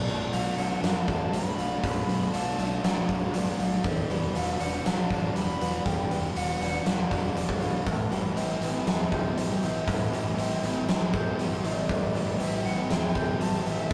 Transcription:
Already playing: B2 D5
0.06 B1 A3, open hi-hat
0.31 B1 D4 F#4 E5, open hi-hat
0.56 B1 A3 D4 F#5, open hi-hat
0.81 F#2 A3 D4 F#4 A5, snare, open hi-hat
1.08 E2 F#3 D4 F#4, kick, open hi-hat
1.31 B1 A3 D4 B5, open hi-hat
1.58 B1 F#3 A3 F#4, open hi-hat
1.81 B1 B2 A3 B5, kick, open hi-hat
2.07 B1 A3, open hi-hat
2.31 B1 D4 F#4 A5, open hi-hat
2.58 B1 A3 D4, open hi-hat
2.82 B1 A3 D4 F#4 D5, snare, open hi-hat
3.09 B1 F#3 D4 F#4, kick, open hi-hat
3.32 B1 A3 D4 D5, open hi-hat
3.58 B1 F#3 A3 F#4 D5, open hi-hat
3.84 E1 E2 E3 G3, kick, open hi-hat
4.09 E1 G3 B3, open hi-hat
4.34 E1 D4 F#4 E5, open hi-hat
4.59 E1 G3 D4 F#5, open hi-hat
4.85 B1 G3 D4 F#4 A5, snare, open hi-hat
5.10 A1 E3 D4, kick, open hi-hat
5.35 E1 G3 D4 B5, open hi-hat
5.61 E1 E3 B3 F#4, open hi-hat
5.85 E1 E2 E3 G3 G5, kick, open hi-hat
6.11 E1 G3 B3, open hi-hat
6.36 E1 D4 F#4 F#5, open hi-hat
6.60 E1 G3 D4, open hi-hat
6.85 E1 G3 D4 F#4 E5, snare, open hi-hat
7.10 E1 E3 D4 F#4, kick, open hi-hat
7.36 E1 G3 D4, open hi-hat
7.49 kick
7.60 B1 E3 B3 F#4, open hi-hat
7.86 A1 A2 E3, kick, open hi-hat
8.11 A1 G3 A3, open hi-hat
8.36 A1 C4 E4 G4, open hi-hat
8.61 A1 E3 C4, open hi-hat
8.86 E2 G3 C4 E4, snare, open hi-hat
9.12 D2 E3 C4 G4, kick, open hi-hat
9.37 A1 G3 C4, open hi-hat
9.62 A1 E3 A3 E4, open hi-hat
9.87 A1 A2 E3, kick, open hi-hat
10.12 A1 G3 A3, open hi-hat
10.37 A1 C4 E4 G4, open hi-hat
10.62 A1 E3 C4, open hi-hat
10.88 A1 G3 C4 E4, snare, open hi-hat
11.14 A1 E3 C4 G4, kick, open hi-hat
11.38 A1 G3 C4, open hi-hat
11.62 A1 E3 A3 E4 D5, open hi-hat
11.89 A1 A2 E3, kick, open hi-hat
12.14 A1 G3 A3, open hi-hat
12.38 A1 C4 E4 G4 E5, open hi-hat
12.64 A1 E3 C4 F#5, open hi-hat
12.89 E2 G3 C4 E4 G5, snare, open hi-hat
13.15 D2 E3 C4 G4, kick, open hi-hat
13.40 A1 G3 C4 A5, open hi-hat
13.65 A1 E3 A3 E4 E5, open hi-hat
13.90 A2

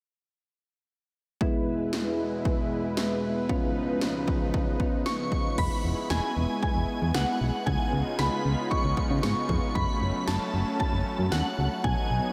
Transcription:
1.41 E2 B2 G#3 B3 E4 B4, kick
1.93 snare
2.45 kick
2.97 G#3 B3 E4, snare
3.49 C#2 C#3 F3 B3 C#4 D#4 F4, kick
4.01 snare
4.28 kick
4.54 kick
4.80 B3 C#4 F4, kick
5.06 C#6, snare
5.32 kick
5.58 E1 G#3 B3 E4 B5, kick, crash
5.84 E1
6.10 E1 G#5, snare
6.36 E1
6.63 G#5, kick
6.75 E1
7.02 E2
7.14 C#2 F#5, snare
7.41 B1
7.66 C#2 C#3 G#3 D#4 F4 G#5, kick
7.93 C#2
8.19 C#2 B5, snare
8.45 C#2
8.71 C#6, kick
8.84 C#2
8.97 kick
9.10 C#3
9.23 G#2 C#6, snare
9.49 F2, kick
9.75 F#1 F#3 A3 C#4 B5, kick
10.01 F#1
10.27 F#1 A5, snare
10.54 F#1
10.80 A5, kick
10.93 F#1
11.19 F#2
11.32 D#2 F#5, snare
11.58 C#2
11.84 B1 F#3 B3 D#4 G#5, kick
12.10 B1

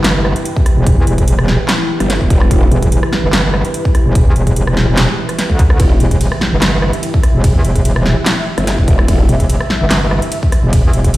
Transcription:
Already playing: G1 E3 E4 G4 B4
0.04 snare, clap, closed hi-hat
0.25 cross-stick
0.36 closed hi-hat
0.45 closed hi-hat
0.56 kick
0.66 cross-stick, closed hi-hat
0.77 E1
0.87 kick, closed hi-hat
0.98 E2
1.07 E1, closed hi-hat
1.18 kick, closed hi-hat
1.28 closed hi-hat
1.39 E1, cross-stick
1.48 snare
1.69 cross-stick, snare, clap, closed hi-hat
2.00 G1, cross-stick, closed hi-hat
2.10 snare, closed hi-hat
2.21 E1, kick
2.30 kick, closed hi-hat
2.41 cross-stick
2.51 E1, kick, closed hi-hat
2.71 E1, closed hi-hat
2.82 kick, closed hi-hat
2.92 closed hi-hat
3.03 cross-stick
3.13 snare
3.24 G1
3.33 snare, clap, closed hi-hat
3.54 cross-stick
3.65 closed hi-hat
3.74 closed hi-hat
3.85 kick
3.95 cross-stick, closed hi-hat
4.06 E1
4.15 kick, closed hi-hat
4.26 E2
4.36 E1, closed hi-hat
4.47 kick, closed hi-hat
4.56 closed hi-hat
4.67 E1, cross-stick
4.77 snare
4.88 E1
4.97 cross-stick, snare, clap, closed hi-hat
5.29 cross-stick, closed hi-hat
5.39 snare, closed hi-hat
5.50 D2, kick
5.59 kick, closed hi-hat
5.70 cross-stick
5.80 E1 E5, kick, closed hi-hat, ride
6.00 E1, closed hi-hat
6.11 kick, closed hi-hat
6.21 closed hi-hat, ride
6.32 cross-stick
6.41 snare
6.52 G1
6.62 snare, clap, closed hi-hat, ride
6.82 cross-stick
6.93 closed hi-hat
7.03 closed hi-hat, ride
7.14 kick
7.23 cross-stick, closed hi-hat
7.34 E1
7.44 kick, closed hi-hat, ride
7.55 E2
7.65 E1, closed hi-hat
7.76 kick, closed hi-hat
7.85 closed hi-hat, ride
7.96 E1, cross-stick
8.06 snare
8.26 cross-stick, snare, clap, closed hi-hat, ride
8.58 G1, cross-stick, closed hi-hat
8.67 snare, closed hi-hat, ride
8.78 E1, kick
8.88 kick, closed hi-hat
8.99 cross-stick
9.08 E1, kick, closed hi-hat, ride
9.29 E1, closed hi-hat
9.40 kick, closed hi-hat
9.49 closed hi-hat, ride
9.61 cross-stick
9.70 snare
9.81 G1
9.91 snare, clap, closed hi-hat, ride
10.11 cross-stick
10.22 closed hi-hat
10.32 closed hi-hat, ride
10.43 kick
10.52 cross-stick, closed hi-hat
10.63 E1
10.73 kick, closed hi-hat, ride
10.84 E2
10.93 E1, closed hi-hat
11.04 kick, closed hi-hat
11.14 closed hi-hat, ride

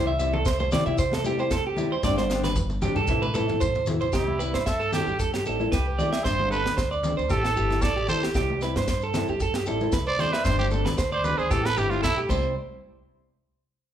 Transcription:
Already playing: C2 E4 G4
0.07 E5
0.19 G3 C4 E4 E5, muted nylon-string guitar stroke, shekere
0.33 A4, low conga
0.45 C5, kick, snare, shekere
0.60 C5, high conga, shekere
0.72 C3 G3 C4 E4 G4 D5, snare, low conga, shekere
0.86 C3 C4 E4 G4 E5, shekere
0.98 C5, kick, snare, shekere
1.12 A4, snare, high conga, shekere
1.24 G3 C4 E4 G4, high conga, shekere
1.39 C4 E4 G4 C5, shekere
1.51 A4, kick, snare, shekere
1.67 G4
1.76 G3 C4 E4 G4, high conga, low conga, shekere
1.92 C5
2.03 G1 G3 C4 D4 G4 D5, kick, snare, shekere
2.16 C5, snare, high conga, shekere
2.30 G3 C4 D4 G4, snare, shekere
2.44 B4, snare, low conga, shekere
2.56 muted clean electric guitar stroke, kick, high tom, shekere
2.70 high tom, shekere
2.82 G2 G3 C4 D4 G4, high tom, low conga, shekere
2.95 G2 D4 G4 A4, mid tom, shekere
3.07 A1 E3 C4 E4, kick, mid tom, shekere
3.22 B4, mid tom, high conga, shekere
3.34 E3 C4 E4 A4, mid tom, high conga, shekere
3.48 C4 E4, mid tom, shekere
3.60 C5, kick, mid tom, shekere
3.75 floor tom, shekere
3.86 E3 E4, muted nylon-string guitar stroke, floor tom, low conga, shekere
4.01 C5, floor tom, shekere
4.12 C2 G3 C4 E4 G4, muted nylon-string guitar stroke, kick, snare, shekere
4.27 high conga
4.39 G3 C4 E4 B4, shekere
4.54 G2 C5, snare, shekere
4.66 A4 E5, kick, snare, shekere
4.80 A4, shekere
4.92 G3 C4 E4 G4, snare, low conga, shekere
5.07 G2 G4, shekere
5.19 A4, kick, snare, shekere
5.34 G4, snare, shekere
5.46 A1 G3 C4 E4 A4, shekere
5.60 C4 E4, high conga, shekere
5.72 C2 G4 B4, kick, snare, shekere
5.98 G3 C4 E4 D5, high conga, low conga, shekere
6.13 E5, snare, shekere
6.24 G1 G3 C4 D4 C5, kick, snare, shekere
6.39 high conga
6.50 G3 C4 D4 A4 B4, shekere
6.65 D2, muted clean electric guitar stroke, snare, shekere
6.77 C5, kick, snare, shekere
6.91 D5, shekere
7.03 G3 C4 D4, low conga, shekere
7.17 D2 C5, shekere
7.30 A1 E3 C4 E4 G4 A4, kick, snare, shekere
7.44 A4, snare, shekere
7.56 G1 E3 E4 G4, shekere
7.70 C4 E4, snare, high conga, shekere
7.82 A1 A4 D5, kick, snare, shekere
7.96 G4, shekere
8.08 E3 C4 E4 A4 C5, high conga, low conga, shekere
8.23 G4, snare, shekere
8.34 C2 G3 C4 E4 G4, kick, snare, shekere
8.50 high conga
8.61 G3 C4 E4 B4, snare, shekere
8.75 G2 C5, snare, shekere
8.88 C5, kick, snare, shekere
9.02 A4, shekere
9.14 G3 C4 E4, snare, low conga, shekere
9.28 G2 G4, shekere
9.40 A4, kick, shekere
9.54 G4, snare, shekere
9.66 A1 G3 C4 E4 A4, shekere
9.81 C4 E4, high conga, shekere
9.92 C2 B4, kick, snare, shekere
10.06 C5 D5, shekere
10.19 G3 C4 E4 C5 D5, snare, high conga, low conga, shekere
10.33 B4 E5, snare
10.44 G1 G3 C4 D4 C5, kick, snare, shekere
10.59 G4, high conga, shekere
10.71 G3 C4 D4 A4, high conga, shekere
10.85 D2 B4, snare, low conga
10.98 C5, kick, snare, shekere
11.12 C5 D5, shekere
11.24 G3 C4 D4 B4, low conga, shekere
11.38 D2 G#4 C5, shekere
11.50 A1 E3 E4 G4 A4, muted nylon-string guitar stroke, kick, snare, high conga, shekere
11.64 A4 B4, snare, shekere
11.77 G1 E3 C4 E4 G4, shekere
11.90 C4 E4 F4, high conga, shekere
12.02 B1 E4 A4, kick, snare, shekere
12.17 G4, shekere
12.29 C2 G3 C4 E4 C5, kick, crash, high conga, shekere

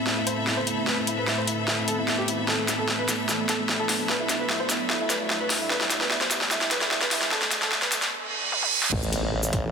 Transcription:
Already playing: A2 A3 B3 C4 A4 E5 B5, riser
0.07 E4, snare
0.17 E4
0.27 C5, closed hi-hat
0.37 E4
0.47 E4, snare
0.57 C5
0.67 E4, closed hi-hat
0.77 E4
0.87 B4, snare
0.97 E4
1.07 E4, closed hi-hat
1.18 B4
1.27 E4, snare
1.38 C5
1.47 E4, closed hi-hat
1.68 E4, snare
1.78 E4
1.88 A4, closed hi-hat
1.98 E4
2.08 E4, snare
2.18 G4
2.28 E4, closed hi-hat
2.38 E4
2.48 D4 A4, snare
2.59 A3
2.68 A3, snare, closed hi-hat, shaker
2.79 A4
2.88 A3, snare
2.99 B4
3.09 A3, snare, closed hi-hat, shaker
3.29 A3, snare, shaker
3.39 A3
3.49 A4, snare, closed hi-hat
3.59 A3
3.69 A3, snare
3.79 A4
3.89 A3, snare, open hi-hat
3.99 A3
4.09 B4, snare
4.20 E4
4.29 E4, snare, closed hi-hat, shaker
4.40 B4
4.49 E4, snare
4.60 C5
4.70 E4, snare, closed hi-hat, shaker
4.90 E4, snare
5.00 E4
5.10 B4, snare, closed hi-hat, shaker
5.20 E4
5.30 E4, snare
5.40 B4
5.50 E4, snare, open hi-hat
5.61 E4
5.70 B4, snare
5.81 E4, snare
5.90 E4, snare, closed hi-hat, shaker
6.01 B4, snare
6.11 E4, snare
6.21 C5, snare
6.31 E4, snare, closed hi-hat, shaker
6.41 snare
6.51 E4, snare, shaker
6.61 E4, snare
6.71 B4, snare, closed hi-hat
6.81 E4, snare
6.91 E4, snare
7.01 B4, snare
7.11 E4, snare, open hi-hat
7.22 E4, snare
7.31 A4, snare
7.42 A3, snare
7.51 A3, snare, closed hi-hat, shaker
7.62 A4, snare
7.72 A3, snare
7.82 B4, snare
7.92 A3, snare, closed hi-hat, shaker
8.02 snare, closed hi-hat
8.12 reverse cymbal
8.52 high tom
8.62 high tom
8.83 snare
8.92 A1 C3 A3 B3, kick, crash, impact
9.03 shaker
9.13 closed hi-hat
9.43 shaker
9.53 A1, kick, closed hi-hat

